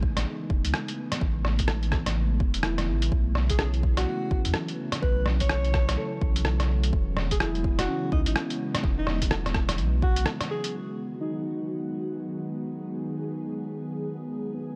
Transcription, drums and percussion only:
0.03 kick loud
0.17 cross-stick medium
0.17 closed hi-hat medium
0.50 kick loud
0.65 closed hi-hat medium
0.74 cross-stick loud
0.88 closed hi-hat soft
1.12 cross-stick medium
1.12 closed hi-hat medium
1.21 kick loud
1.45 cross-stick medium
1.59 kick medium
1.59 closed hi-hat medium
1.68 cross-stick loud
1.83 closed hi-hat soft
1.92 kick loud
1.92 cross-stick medium
2.06 cross-stick medium
2.06 closed hi-hat medium
2.40 kick loud
2.54 closed hi-hat medium
2.63 cross-stick loud
2.78 cross-stick medium
2.78 closed hi-hat soft
3.02 closed hi-hat medium
3.12 kick loud
3.35 cross-stick medium
3.50 kick medium
3.50 closed hi-hat medium
3.59 cross-stick loud
3.74 closed hi-hat soft
3.83 kick loud
3.97 cross-stick medium
3.97 closed hi-hat medium
4.31 kick loud
4.45 closed hi-hat medium
4.54 cross-stick loud
4.68 closed hi-hat soft
4.92 cross-stick medium
4.92 closed hi-hat medium
5.03 kick loud
5.26 cross-stick medium
5.40 kick medium
5.40 closed hi-hat medium
5.49 cross-stick medium
5.65 closed hi-hat soft
5.74 kick loud
5.74 cross-stick medium
5.89 cross-stick medium
5.89 closed hi-hat medium
6.21 kick loud
6.36 closed hi-hat medium
6.45 cross-stick loud
6.60 cross-stick medium
6.60 closed hi-hat soft
6.83 closed hi-hat medium
6.93 kick loud
7.17 cross-stick medium
7.31 kick medium
7.31 closed hi-hat medium
7.40 cross-stick loud
7.55 closed hi-hat soft
7.64 kick loud
7.79 cross-stick medium
7.79 closed hi-hat medium
8.12 kick loud
8.26 closed hi-hat medium
8.36 cross-stick loud
8.50 closed hi-hat soft
8.75 cross-stick medium
8.75 closed hi-hat medium
8.84 kick loud
9.07 cross-stick medium
9.22 kick medium
9.22 closed hi-hat medium
9.31 cross-stick loud
9.46 cross-stick medium
9.46 closed hi-hat soft
9.55 kick loud
9.55 cross-stick medium
9.69 cross-stick medium
9.69 closed hi-hat medium
9.78 closed hi-hat soft
10.02 kick loud
10.16 closed hi-hat medium
10.26 cross-stick loud
10.41 cross-stick medium
10.41 closed hi-hat soft
10.64 closed hi-hat medium

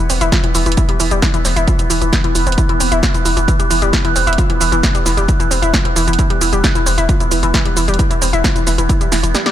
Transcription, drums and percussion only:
0.10 open hi-hat loud
0.10 shaker medium
0.21 closed hi-hat medium
0.21 shaker soft
0.32 kick loud
0.32 snare loud
0.32 closed hi-hat medium
0.32 shaker soft
0.44 closed hi-hat medium
0.55 open hi-hat loud
0.55 shaker medium
0.66 closed hi-hat medium
0.66 shaker soft
0.72 closed hi-hat medium
0.77 kick loud
0.77 closed hi-hat medium
0.77 shaker soft
0.89 closed hi-hat medium
1.00 open hi-hat loud
1.00 shaker medium
1.11 closed hi-hat medium
1.11 shaker soft
1.22 kick loud
1.22 snare loud
1.22 closed hi-hat medium
1.22 shaker soft
1.34 closed hi-hat medium
1.34 shaker soft
1.45 snare soft
1.45 open hi-hat loud
1.45 shaker medium
1.56 closed hi-hat medium
1.56 shaker soft
1.68 kick loud
1.68 closed hi-hat medium
1.68 shaker soft
1.79 closed hi-hat medium
1.79 shaker soft
1.90 open hi-hat loud
1.90 shaker medium
2.02 closed hi-hat medium
2.02 shaker soft
2.13 kick loud
2.13 snare loud
2.13 closed hi-hat medium
2.13 shaker soft
2.24 closed hi-hat medium
2.35 open hi-hat medium
2.35 shaker medium
2.47 closed hi-hat soft
2.47 shaker soft
2.52 closed hi-hat medium
2.58 kick loud
2.58 closed hi-hat medium
2.58 shaker soft
2.69 closed hi-hat medium
2.80 open hi-hat loud
2.80 shaker medium
2.92 closed hi-hat medium
2.92 shaker soft
3.03 kick loud
3.03 snare loud
3.03 closed hi-hat medium
3.03 shaker soft
3.14 closed hi-hat medium
3.14 shaker soft
3.26 open hi-hat loud
3.26 shaker medium
3.37 closed hi-hat medium
3.37 shaker soft
3.48 kick loud
3.48 closed hi-hat medium
3.48 shaker soft
3.60 closed hi-hat medium
3.60 shaker soft
3.71 open hi-hat loud
3.71 shaker medium
3.82 closed hi-hat medium
3.82 shaker soft
3.93 kick loud
3.93 snare loud
3.93 closed hi-hat medium
3.93 shaker soft
4.05 closed hi-hat medium
4.16 open hi-hat loud
4.16 shaker medium
4.27 closed hi-hat soft
4.27 shaker soft
4.33 closed hi-hat medium
4.38 kick loud
4.38 closed hi-hat medium
4.38 shaker soft
4.50 closed hi-hat medium
4.61 open hi-hat loud
4.61 shaker medium
4.72 closed hi-hat soft
4.72 shaker soft
4.83 kick loud
4.83 snare loud
4.83 closed hi-hat medium
4.83 shaker soft
4.95 closed hi-hat medium
4.95 shaker soft
5.06 snare soft
5.06 open hi-hat medium
5.06 shaker medium
5.17 closed hi-hat medium
5.17 shaker soft
5.28 kick loud
5.28 closed hi-hat medium
5.28 shaker soft
5.40 closed hi-hat medium
5.40 shaker soft
5.51 open hi-hat loud
5.51 shaker medium
5.63 closed hi-hat medium
5.63 shaker soft
5.74 kick loud
5.74 snare loud
5.74 closed hi-hat medium
5.74 shaker soft
5.85 closed hi-hat soft
5.96 open hi-hat medium
5.96 shaker medium
6.08 closed hi-hat soft
6.08 shaker soft
6.13 closed hi-hat medium
6.19 kick loud
6.19 closed hi-hat medium
6.19 shaker soft
6.30 closed hi-hat medium
6.41 open hi-hat loud
6.41 shaker medium
6.53 closed hi-hat medium
6.53 shaker soft
6.64 kick loud
6.64 snare loud
6.64 closed hi-hat medium
6.64 shaker soft
6.75 closed hi-hat medium
6.75 shaker soft
6.86 open hi-hat medium
6.86 shaker medium
6.98 closed hi-hat medium
6.98 shaker soft
7.09 kick loud
7.09 closed hi-hat medium
7.09 shaker soft
7.20 closed hi-hat medium
7.20 shaker soft
7.31 open hi-hat loud
7.31 shaker medium
7.43 closed hi-hat medium
7.43 shaker soft
7.54 kick loud
7.54 snare loud
7.54 closed hi-hat medium
7.54 shaker soft
7.65 closed hi-hat medium
7.77 open hi-hat medium
7.77 shaker medium
7.88 closed hi-hat soft
7.88 shaker soft
7.94 closed hi-hat medium
7.99 kick loud
7.99 closed hi-hat medium
7.99 shaker soft
8.11 closed hi-hat medium
8.11 shaker soft
8.22 open hi-hat loud
8.22 shaker medium
8.33 closed hi-hat medium
8.33 shaker soft
8.44 kick loud
8.44 snare loud
8.44 closed hi-hat medium
8.44 shaker soft
8.56 closed hi-hat medium
8.56 shaker soft
8.67 snare soft
8.67 open hi-hat medium
8.67 shaker medium
8.78 closed hi-hat medium
8.78 shaker soft
8.89 kick loud
8.89 closed hi-hat medium
8.89 shaker soft
9.01 closed hi-hat medium
9.01 shaker soft
9.12 snare medium
9.12 open hi-hat loud
9.12 shaker medium
9.24 closed hi-hat medium
9.24 shaker soft
9.35 snare medium
9.35 closed hi-hat medium
9.35 shaker soft
9.46 snare medium
9.46 closed hi-hat medium

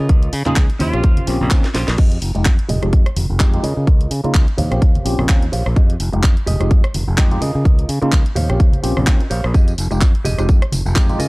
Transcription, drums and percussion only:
0.09 kick loud
0.09 closed hi-hat medium
0.23 closed hi-hat medium
0.23 tambourine soft
0.33 open hi-hat loud
0.33 tambourine medium
0.46 clap soft
0.46 closed hi-hat soft
0.46 tambourine soft
0.46 low conga medium
0.56 kick loud
0.56 clap loud
0.56 closed hi-hat medium
0.70 closed hi-hat medium
0.70 tambourine soft
0.80 open hi-hat medium
0.80 tambourine medium
0.80 high conga medium
0.93 cross-stick medium
0.93 closed hi-hat soft
0.93 tambourine soft
1.04 kick loud
1.04 closed hi-hat medium
1.17 closed hi-hat medium
1.17 tambourine soft
1.17 high conga medium
1.27 open hi-hat loud
1.27 tambourine medium
1.40 tambourine soft
1.40 high conga medium
1.50 kick loud
1.50 clap loud
1.50 closed hi-hat medium
1.64 snare medium
1.64 closed hi-hat medium
1.75 snare medium
1.75 open hi-hat medium
1.75 tambourine medium
1.88 snare medium
1.88 closed hi-hat soft
1.88 tambourine soft
1.98 kick loud
1.98 closed hi-hat medium
1.98 crash loud
2.12 closed hi-hat medium
2.22 open hi-hat loud
2.35 closed hi-hat soft
2.45 kick loud
2.45 clap loud
2.45 closed hi-hat medium
2.59 closed hi-hat medium
2.69 open hi-hat medium
2.69 tambourine loud
2.69 high conga medium
2.69 low conga medium
2.83 cross-stick medium
2.83 closed hi-hat soft
2.93 kick loud
2.93 closed hi-hat medium
3.06 cross-stick medium
3.06 closed hi-hat medium
3.16 open hi-hat loud
3.16 tambourine medium
3.16 high conga medium
3.29 tambourine soft
3.40 kick loud
3.40 clap loud
3.40 closed hi-hat medium
3.53 closed hi-hat medium
3.53 tambourine soft
3.53 low conga medium
3.64 open hi-hat medium
3.64 tambourine medium
3.87 kick loud
3.87 closed hi-hat medium
4.01 closed hi-hat medium
4.11 open hi-hat loud
4.24 closed hi-hat soft
4.34 kick loud
4.34 clap loud
4.34 closed hi-hat medium
4.48 closed hi-hat medium
4.58 open hi-hat loud
4.58 tambourine medium
4.58 high conga medium
4.58 low conga medium
4.72 cross-stick medium
4.72 closed hi-hat soft
4.72 tambourine soft
4.82 kick loud
4.82 closed hi-hat medium
4.95 closed hi-hat medium
4.95 tambourine soft
4.95 high conga medium
5.06 open hi-hat loud
5.06 tambourine loud
5.18 cross-stick medium
5.18 tambourine soft
5.18 high conga medium
5.29 kick loud
5.29 clap loud
5.29 closed hi-hat medium
5.29 tambourine medium
5.42 closed hi-hat medium
5.53 open hi-hat medium
5.66 cross-stick medium
5.76 kick loud
5.76 closed hi-hat medium
5.90 closed hi-hat medium
6.00 open hi-hat loud
6.13 closed hi-hat soft
6.23 kick loud
6.23 clap loud
6.23 closed hi-hat medium
6.37 closed hi-hat soft
6.47 open hi-hat loud
6.47 tambourine medium
6.47 high conga medium
6.47 low conga medium
6.61 cross-stick medium
6.61 closed hi-hat soft
6.61 tambourine soft
6.71 kick loud
6.71 closed hi-hat medium
6.84 cross-stick medium
6.84 closed hi-hat medium
6.94 open hi-hat loud
6.94 tambourine medium
6.94 high conga medium
7.08 tambourine soft
7.18 kick loud
7.18 clap loud
7.18 closed hi-hat medium
7.31 closed hi-hat medium
7.31 tambourine soft
7.31 low conga medium
7.42 open hi-hat medium
7.42 tambourine medium
7.54 tambourine soft
7.65 kick loud
7.65 closed hi-hat medium
7.79 closed hi-hat medium
7.89 open hi-hat loud
8.02 closed hi-hat soft
8.12 kick loud
8.12 clap loud
8.12 closed hi-hat medium
8.26 closed hi-hat medium
8.36 open hi-hat loud
8.36 tambourine medium
8.36 high conga medium
8.36 low conga medium
8.50 cross-stick medium
8.50 closed hi-hat soft
8.50 tambourine soft
8.60 kick loud
8.60 closed hi-hat medium
8.72 closed hi-hat medium
8.72 tambourine soft
8.72 high conga medium
8.84 open hi-hat loud
8.97 cross-stick medium
8.97 tambourine soft
8.97 high conga medium
9.07 kick loud
9.07 clap loud
9.07 closed hi-hat medium
9.07 tambourine medium
9.20 closed hi-hat soft
9.31 open hi-hat medium
9.44 cross-stick medium
9.54 kick loud
9.54 closed hi-hat medium
9.54 tambourine soft
9.68 closed hi-hat medium
9.68 tambourine soft
9.78 open hi-hat loud
9.78 tambourine loud
9.78 tambourine medium
9.91 closed hi-hat soft
9.91 tambourine soft
10.01 kick loud
10.01 clap loud
10.01 closed hi-hat medium
10.01 tambourine soft
10.15 closed hi-hat medium
10.15 tambourine soft
10.25 open hi-hat medium
10.25 tambourine medium
10.25 high conga medium
10.25 low conga medium
10.38 cross-stick medium
10.38 closed hi-hat soft
10.38 tambourine soft
10.49 kick loud
10.49 closed hi-hat medium
10.49 tambourine soft
10.62 cross-stick medium
10.62 closed hi-hat soft
10.72 open hi-hat loud
10.72 tambourine medium
10.72 high conga medium
10.86 tambourine soft
10.96 kick loud
10.96 clap loud
10.96 closed hi-hat medium
10.96 tambourine soft
11.09 closed hi-hat soft
11.09 tambourine soft
11.09 low conga medium
11.19 open hi-hat medium
11.19 tambourine medium

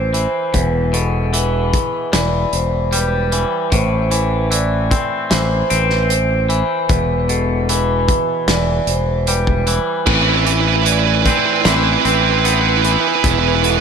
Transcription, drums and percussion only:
0.14 closed hi-hat medium
0.54 kick medium
0.54 closed hi-hat medium
0.94 closed hi-hat medium
1.34 closed hi-hat medium
1.73 kick medium
1.73 closed hi-hat medium
2.13 snare loud
2.13 closed hi-hat medium
2.53 closed hi-hat medium
2.93 closed hi-hat medium
3.32 closed hi-hat medium
3.72 kick medium
3.72 closed hi-hat medium
4.11 closed hi-hat medium
4.52 closed hi-hat medium
4.91 kick medium
4.91 closed hi-hat medium
5.31 snare loud
5.31 closed hi-hat medium
5.70 closed hi-hat medium
5.90 snare soft
6.10 closed hi-hat medium
6.50 closed hi-hat medium
6.89 kick medium
6.89 closed hi-hat medium
7.29 closed hi-hat medium
7.69 closed hi-hat medium
8.08 kick medium
8.08 closed hi-hat medium
8.48 snare loud
8.48 closed hi-hat medium
8.87 closed hi-hat medium
9.27 closed hi-hat medium
9.47 kick medium
9.67 closed hi-hat medium
10.07 kick loud
10.07 crash medium
10.47 closed hi-hat medium
10.86 closed hi-hat medium
11.26 kick medium
11.26 closed hi-hat medium
11.65 snare loud
11.65 closed hi-hat medium
12.05 closed hi-hat medium
12.45 closed hi-hat medium
12.84 closed hi-hat medium
13.24 kick loud
13.24 closed hi-hat medium
13.64 closed hi-hat medium

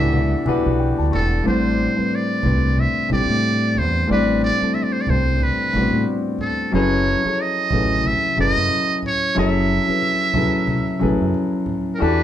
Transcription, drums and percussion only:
0.13 muted conga soft
0.13 high conga medium
0.46 muted conga soft
0.46 high conga medium
1.11 low conga medium
1.44 muted conga soft
2.43 muted conga soft
2.43 high conga medium
2.43 low conga medium
2.77 high conga medium
3.10 muted conga soft
3.10 high conga medium
3.75 muted conga soft
3.75 low conga soft
4.42 muted conga soft
4.75 muted conga soft
5.07 high conga medium
5.07 low conga medium
5.40 high conga medium
5.74 muted conga soft
5.74 high conga medium
6.38 low conga medium
7.05 muted conga soft
7.70 muted conga soft
7.70 high conga medium
7.70 low conga medium
8.04 muted conga soft
8.04 high conga medium
8.37 high conga medium
8.70 muted conga soft
9.02 low conga soft
9.35 muted conga soft
10.01 muted conga soft
10.34 muted conga soft
10.34 high conga medium
10.34 low conga medium
10.67 muted conga soft
10.67 high conga medium
11.01 high conga medium
11.34 muted conga soft
11.66 low conga medium

